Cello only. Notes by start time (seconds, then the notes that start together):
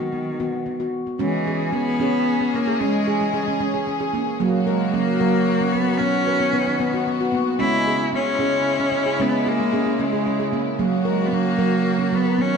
Already playing: D#3
1.21 E3
1.74 B3
2.55 A#3
2.82 G#3
4.67 G#3
4.93 A#3
5.72 B3
5.98 C#4
7.60 E4
8.15 C#4
9.22 B3
9.48 A#3
10.01 G#3
11.08 G#3
11.27 B3
11.33 A#3
12.15 B3
12.42 C#4